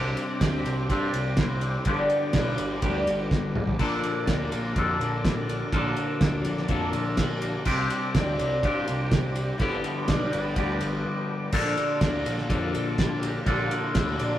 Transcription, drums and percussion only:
0.17 ride medium
0.41 kick loud
0.41 snare loud
0.41 ride loud
0.66 ride medium
0.90 kick loud
0.90 ride medium
1.14 ride medium
1.37 kick loud
1.37 snare loud
1.37 ride medium
1.61 ride medium
1.85 kick loud
1.85 ride medium
2.10 ride medium
2.33 kick loud
2.33 snare loud
2.33 ride loud
2.58 ride medium
2.82 kick loud
2.82 ride medium
3.07 ride medium
3.31 kick loud
3.31 snare medium
3.55 mid tom medium
3.67 floor tom loud
3.79 kick loud
3.79 crash loud
4.03 ride medium
4.27 kick loud
4.27 snare loud
4.27 ride loud
4.52 ride medium
4.76 kick loud
4.76 ride medium
5.01 ride medium
5.25 kick loud
5.25 snare loud
5.25 ride medium
5.49 ride medium
5.72 kick loud
5.72 ride medium
5.96 ride medium
6.21 kick loud
6.21 snare loud
6.21 ride loud
6.45 ride medium
6.57 snare soft
6.68 kick loud
6.68 ride medium
6.93 ride medium
7.17 kick loud
7.17 snare loud
7.17 ride loud
7.42 ride medium
7.65 kick loud
7.65 crash loud
7.90 ride medium
8.15 kick loud
8.15 snare loud
8.15 ride loud
8.39 ride medium
8.63 kick loud
8.63 ride medium
8.88 ride medium
9.12 kick loud
9.12 snare loud
9.12 ride medium
9.36 ride medium
9.59 kick loud
9.59 ride medium
9.84 ride medium
10.08 kick loud
10.08 snare loud
10.08 ride loud
10.33 ride medium
10.56 kick medium
10.56 ride medium
10.81 ride medium
11.52 kick loud
11.52 crash loud
11.77 ride medium
12.01 kick loud
12.01 snare loud
12.01 ride loud
12.26 ride medium
12.38 snare soft
12.50 kick loud
12.50 ride medium
12.75 ride medium
12.98 kick loud
12.98 snare loud
12.98 ride medium
13.23 ride medium
13.46 kick loud
13.46 ride medium
13.71 ride medium
13.95 kick loud
13.95 snare loud
13.95 ride loud
14.19 ride medium

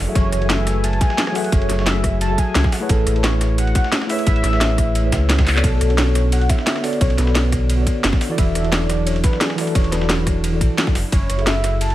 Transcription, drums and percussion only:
0.15 kick loud
0.15 closed hi-hat medium
0.15 ride loud
0.32 cross-stick soft
0.32 closed hi-hat medium
0.32 ride medium
0.42 ride soft
0.50 snare loud
0.50 closed hi-hat medium
0.50 ride medium
0.67 cross-stick soft
0.67 snare soft
0.67 closed hi-hat medium
0.67 ride medium
0.84 closed hi-hat medium
0.84 ride medium
0.93 ride soft
1.01 kick loud
1.01 snare soft
1.01 closed hi-hat medium
1.01 ride medium
1.10 snare soft
1.18 snare loud
1.18 closed hi-hat medium
1.18 ride medium
1.27 cross-stick soft
1.27 snare medium
1.35 snare soft
1.35 open hi-hat medium
1.35 ride medium
1.44 ride soft
1.52 kick loud
1.52 closed hi-hat medium
1.52 ride loud
1.62 ride soft
1.70 cross-stick soft
1.70 snare soft
1.70 closed hi-hat loud
1.70 ride medium
1.79 snare soft
1.86 snare loud
1.86 closed hi-hat medium
1.86 ride medium
2.04 kick medium
2.04 cross-stick soft
2.04 closed hi-hat medium
2.04 ride medium
2.21 closed hi-hat medium
2.21 ride medium
2.38 kick medium
2.38 closed hi-hat medium
2.38 ride medium
2.55 snare loud
2.55 closed hi-hat medium
2.55 ride medium
2.64 kick loud
2.64 snare medium
2.72 snare medium
2.72 open hi-hat medium
2.72 ride medium
2.89 kick loud
2.89 closed hi-hat medium
2.89 ride medium
3.07 cross-stick soft
3.07 closed hi-hat loud
3.07 ride medium
3.16 ride soft
3.24 snare loud
3.24 closed hi-hat medium
3.24 ride medium
3.41 cross-stick soft
3.41 snare soft
3.41 closed hi-hat loud
3.41 ride medium
3.58 closed hi-hat medium
3.58 ride medium
3.67 ride soft
3.75 kick loud
3.75 snare soft
3.75 closed hi-hat loud
3.75 ride medium
3.84 snare soft
3.92 snare loud
3.92 closed hi-hat medium
3.92 ride medium
4.01 cross-stick soft
4.01 snare medium
4.09 snare medium
4.09 open hi-hat medium
4.09 ride medium
4.19 ride soft
4.27 kick loud
4.27 closed hi-hat medium
4.27 ride loud
4.36 ride soft
4.44 cross-stick soft
4.44 snare soft
4.44 closed hi-hat loud
4.44 ride medium
4.53 snare soft
4.61 snare loud
4.61 closed hi-hat medium
4.61 ride medium
4.78 kick medium
4.78 cross-stick soft
4.78 closed hi-hat loud
4.78 ride medium
4.95 closed hi-hat medium
4.95 ride medium
5.12 kick medium
5.12 snare loud
5.12 closed hi-hat loud
5.12 ride medium
5.29 snare loud
5.29 closed hi-hat medium
5.29 ride medium
5.38 kick loud
5.38 snare loud
5.38 ride medium
5.47 snare medium
5.47 clap medium
5.47 open hi-hat medium
5.47 ride medium
5.56 clap loud
5.64 kick loud
5.64 closed hi-hat medium
5.64 ride medium
5.81 cross-stick soft
5.81 closed hi-hat loud
5.81 ride medium
5.90 ride soft
5.98 snare loud
5.98 closed hi-hat medium
5.98 ride medium
6.15 cross-stick soft
6.15 snare soft
6.15 closed hi-hat loud
6.15 ride medium
6.32 closed hi-hat medium
6.32 ride medium
6.41 ride soft
6.49 kick loud
6.49 snare soft
6.49 closed hi-hat loud
6.49 ride medium
6.58 snare soft
6.67 snare loud
6.67 closed hi-hat medium
6.67 ride medium
6.76 cross-stick medium
6.76 snare medium
6.84 snare soft
6.84 open hi-hat medium
6.84 ride medium
6.93 ride soft
7.01 kick loud
7.01 closed hi-hat medium
7.01 ride medium
7.10 ride soft
7.18 cross-stick soft
7.18 snare soft
7.18 closed hi-hat loud
7.18 ride medium
7.27 snare soft
7.35 snare loud
7.35 closed hi-hat medium
7.35 ride medium
7.52 kick medium
7.52 cross-stick soft
7.52 closed hi-hat medium
7.52 ride medium
7.69 closed hi-hat medium
7.69 ride medium
7.87 kick medium
7.87 closed hi-hat loud
7.87 ride medium
8.04 snare loud
8.04 closed hi-hat medium
8.04 ride medium
8.13 kick loud
8.13 snare medium
8.21 snare medium
8.21 open hi-hat medium
8.21 ride medium
8.38 kick loud
8.38 closed hi-hat medium
8.38 ride medium
8.55 cross-stick soft
8.55 closed hi-hat loud
8.55 ride medium
8.64 ride soft
8.72 snare loud
8.72 closed hi-hat medium
8.72 ride medium
8.90 cross-stick soft
8.90 snare soft
8.90 closed hi-hat medium
8.90 ride medium
9.07 closed hi-hat medium
9.07 ride medium
9.16 ride soft
9.24 kick loud
9.24 snare soft
9.24 closed hi-hat loud
9.24 ride medium
9.33 snare soft
9.41 snare loud
9.41 closed hi-hat medium
9.41 ride medium
9.50 cross-stick soft
9.50 snare medium
9.58 snare soft
9.58 open hi-hat medium
9.58 ride medium
9.67 ride soft
9.75 kick loud
9.75 closed hi-hat medium
9.75 ride medium
9.84 ride soft
9.92 cross-stick soft
9.92 snare soft
9.92 closed hi-hat medium
9.92 ride medium
10.01 snare soft
10.09 snare loud
10.09 closed hi-hat medium
10.09 ride medium
10.27 kick medium
10.27 cross-stick soft
10.27 closed hi-hat medium
10.27 ride medium
10.44 closed hi-hat medium
10.44 ride medium
10.61 kick medium
10.61 closed hi-hat medium
10.61 ride medium
10.78 snare loud
10.78 closed hi-hat medium
10.78 ride medium
10.87 kick loud
10.87 snare soft
10.95 snare medium
10.95 open hi-hat medium
10.95 ride medium
11.12 kick loud
11.12 closed hi-hat medium
11.12 ride medium
11.30 cross-stick soft
11.30 closed hi-hat medium
11.30 ride medium
11.39 ride soft
11.47 snare loud
11.47 closed hi-hat medium
11.47 ride medium
11.64 cross-stick soft
11.64 snare soft
11.64 closed hi-hat medium
11.64 ride medium
11.81 closed hi-hat medium
11.81 ride medium
11.90 ride soft

